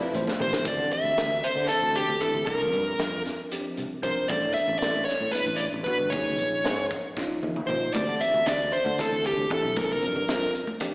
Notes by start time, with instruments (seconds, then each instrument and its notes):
Already playing: string section C3 F3 G3 E4, tine electric piano F3 C4 E4 A4
0.01 tine electric piano B4, muted fretless electric bass stroke
0.13 fretless electric bass A1, tine electric piano C5, closed hi-hat, high conga
0.27 snare, high conga
0.39 fretless electric bass A1, tine electric piano F3 C4 E4 G4, lead electric guitar C5, mid tom, low conga
0.53 snare, low conga
0.65 fretless electric bass D2, tine electric piano E3 C4 D4 G4, lead electric guitar D5, kick, closed hi-hat
0.79 fretless electric bass D3
0.91 lead electric guitar E5, closed hi-hat
1.04 fretless electric bass D2
1.17 fretless electric bass D2, snare, closed hi-hat
1.43 lead electric guitar C5, closed hi-hat
1.56 fretless electric bass D3
1.68 tine electric piano E3 C4 D4 A4, lead electric guitar A4, muted fretless electric bass stroke, closed hi-hat
1.82 fretless electric bass D2
1.95 lead electric guitar G4, closed hi-hat
2.09 fretless electric bass D2
2.21 tine electric piano E3 C4 D4 E4, lead electric guitar A4, kick, closed hi-hat
2.34 fretless electric bass D2
2.46 fretless electric bass C2, tine electric piano F3 C4 D4 A#4, lead electric guitar A#4, kick, closed hi-hat
2.73 fretless electric bass G2, closed hi-hat
2.98 fretless electric bass F2, snare, closed hi-hat
3.25 snare, closed hi-hat
3.52 tine electric piano F3 C4 D4 G4, closed hi-hat
3.77 fretless electric bass C2, closed hi-hat
3.90 muted fretless electric bass stroke
4.03 fretless electric bass C2, tine electric piano F3 C4 D4 A#4, lead electric guitar C5, kick, closed hi-hat
4.17 muted fretless electric bass stroke
4.28 fretless electric bass A1, tine electric piano G3 B3 D4 A4, lead electric guitar D5, kick, closed hi-hat
4.42 fretless electric bass A2
4.54 lead electric guitar E5, closed hi-hat
4.68 fretless electric bass A1
4.79 fretless electric bass A1, lead electric guitar D5, snare, closed hi-hat
5.05 lead electric guitar C#5, closed hi-hat
5.09 snare
5.21 fretless electric bass A2
5.32 tine electric piano G3 B3 D4 E4, lead electric guitar B4, muted fretless electric bass stroke, closed hi-hat
5.46 fretless electric bass A1
5.56 lead electric guitar D5
5.60 closed hi-hat
5.72 fretless electric bass A1
5.84 tine electric piano G3 B3 D4 F#4, lead electric guitar B4, kick, closed hi-hat
5.99 fretless electric bass G1
6.10 fretless electric bass D#2, tine electric piano F3 C#4 D#4 G#4, lead electric guitar C#5, kick, closed hi-hat
6.38 fretless electric bass A#1, closed hi-hat
6.65 fretless electric bass G#2, snare, closed hi-hat
6.91 kick, closed hi-hat
7.17 tine electric piano F3 C#4 D#4 F4, kick, snare
7.43 fretless electric bass D#2, high tom
7.56 muted fretless electric bass stroke, mid tom
7.67 fretless electric bass D#2, tine electric piano F3 C#4 D#4 F4, lead electric guitar C5, mid tom
7.83 muted fretless electric bass stroke
7.94 fretless electric bass D2, tine electric piano E3 C4 D4 G4, lead electric guitar D5, kick, closed hi-hat, high conga
8.08 fretless electric bass D3
8.21 lead electric guitar E5, closed hi-hat
8.34 fretless electric bass D2, low conga
8.47 fretless electric bass D2, lead electric guitar D5, snare, closed hi-hat
8.72 lead electric guitar C5, closed hi-hat
8.85 fretless electric bass D3, high conga
8.98 tine electric piano E3 C4 D4 E4, lead electric guitar A4, muted fretless electric bass stroke, snare, closed hi-hat, low conga
9.11 fretless electric bass D2
9.24 lead electric guitar G4, closed hi-hat
9.38 fretless electric bass D2, low conga
9.50 tine electric piano E3 C4 D4 E4, lead electric guitar A4, kick, closed hi-hat, low conga
9.63 fretless electric bass B1
9.76 fretless electric bass C2, tine electric piano F3 C4 D4 A#4, lead electric guitar A#4, kick, closed hi-hat, high conga
9.85 lead electric guitar A4
9.92 lead electric guitar A#4
10.02 fretless electric bass G2, closed hi-hat
10.16 low conga
10.28 fretless electric bass F2, snare, closed hi-hat
10.55 closed hi-hat
10.67 high conga
10.80 tine electric piano F3 C4 D4 G4, closed hi-hat, low conga